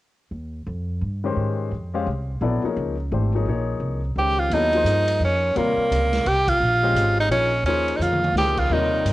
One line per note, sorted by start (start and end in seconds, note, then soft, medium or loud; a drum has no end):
0.31 0.66 D#2 medium
0.66 1.01 F2 medium
1.01 1.36 G2 medium
1.24 1.69 D#3 medium
1.24 1.70 G#3 medium
1.24 1.70 C#4 soft
1.24 1.70 G4 medium
1.24 1.71 C5 medium
1.36 1.71 G#2 medium
1.72 2.06 F2 medium
1.94 2.06 G#3 medium
1.94 2.06 C#4 soft
1.94 2.06 G4 medium
1.94 2.06 C5 medium
1.94 2.06 F5 medium
2.06 2.40 C2 medium
2.41 2.62 A#1 medium
2.41 2.61 F#3 soft
2.41 2.62 B3 soft
2.41 2.62 E4 soft
2.41 2.62 A4 soft
2.41 2.62 D5 medium
2.64 2.94 F3 medium
2.64 2.94 A#3 soft
2.64 2.95 D#4 soft
2.64 2.95 G#4 soft
2.64 2.95 C#5 soft
2.64 muted upright bass stroke soft
2.77 3.11 C#2 medium
3.12 3.45 G#1 medium
3.12 3.32 E3 soft
3.12 3.32 A3 soft
3.12 3.32 D4 soft
3.12 3.32 G4 soft
3.12 3.32 C5 soft
3.35 3.46 F3 soft
3.35 3.47 A#3 soft
3.35 3.47 D#4 soft
3.35 3.47 G#4 soft
3.35 3.48 C#5 medium
3.46 3.79 A#1 medium
3.46 4.00 F3 soft
3.46 4.00 A#3 soft
3.46 4.00 D#4 soft
3.46 4.00 G#4 soft
3.50 4.00 C#5 medium
3.80 4.15 C2 medium
4.16 4.49 C#2 medium
4.16 4.52 D#3 soft
4.16 4.52 G#3 soft
4.16 4.52 C#4 soft
4.16 4.41 G4 medium
4.16 4.53 G4 soft
4.16 4.53 C5 soft
4.39 4.55 F4 medium
4.50 4.83 D#2 medium
4.50 4.72 F#3 soft
4.50 4.72 B3 soft
4.50 5.22 D#4 loud
4.50 ride soft
4.54 4.72 E4 soft
4.54 4.72 A4 soft
4.54 4.73 C#5 medium
4.73 5.49 F3 soft
4.73 5.49 A#3 soft
4.73 5.49 D#4 soft
4.73 5.50 G#4 soft
4.73 5.50 C5 medium
4.73 ride soft
4.84 5.19 G2 medium
4.84 hi-hat pedal medium
4.84 ride medium
5.08 ride medium
5.20 5.54 F2 medium
5.24 5.58 C#4 medium
5.55 5.76 D#2 medium
5.55 6.53 C3 soft
5.55 6.53 G3 medium
5.55 6.29 A#3 medium
5.55 6.54 F4 medium
5.55 6.53 A#4 soft
5.55 6.53 C#5 medium
5.55 ride soft
5.76 muted upright bass stroke soft
5.91 6.25 C#2 medium
5.91 hi-hat pedal soft
5.91 ride medium
6.13 snare soft
6.13 ride soft
6.25 6.60 C2 medium
6.25 6.50 G4 medium
6.25 ride soft
6.47 7.18 F4 medium
6.47 kick medium
6.47 ride medium
6.60 6.93 A#1 medium
6.83 7.28 G#3 medium
6.83 7.28 C#4 soft
6.83 7.29 G4 medium
6.83 7.29 C5 medium
6.83 7.29 D#5 medium
6.94 7.28 G#1 medium
6.94 hi-hat pedal medium
6.94 ride medium
7.20 7.31 D#4 medium
7.28 7.62 A#1 medium
7.28 7.50 F3 soft
7.28 7.51 A#3 soft
7.28 7.63 C#4 medium
7.28 7.50 D#4 soft
7.28 7.51 G#4 soft
7.28 7.51 D#5 medium
7.28 ride medium
7.63 7.98 D#2 medium
7.63 7.98 C#4 medium
7.63 ride soft
7.67 8.19 F3 soft
7.67 8.19 A#3 soft
7.67 8.19 D#4 soft
7.67 8.19 G#4 soft
7.67 8.19 C5 medium
7.88 ride soft
7.96 8.32 F2 medium
7.96 8.03 D#4 medium
8.01 8.36 F4 medium
8.01 hi-hat pedal soft
8.01 mid tom soft
8.13 mid tom soft
8.24 mid tom medium
8.33 8.68 C#2 medium
8.33 snare soft
8.37 8.89 F3 soft
8.37 8.89 A#3 soft
8.37 8.89 D#4 soft
8.37 8.60 G4 medium
8.37 8.89 G#4 soft
8.37 8.90 C5 medium
8.57 8.74 F4 medium
8.57 kick medium
8.57 crash medium
8.70 9.04 D#2 medium
8.70 9.13 C3 medium
8.70 9.13 G3 medium
8.70 9.13 D#4 medium
8.70 9.13 F4 medium
8.70 9.13 A#4 medium
8.70 9.13 C#5 medium
9.05 9.13 G2 medium
9.05 hi-hat pedal soft
9.05 ride medium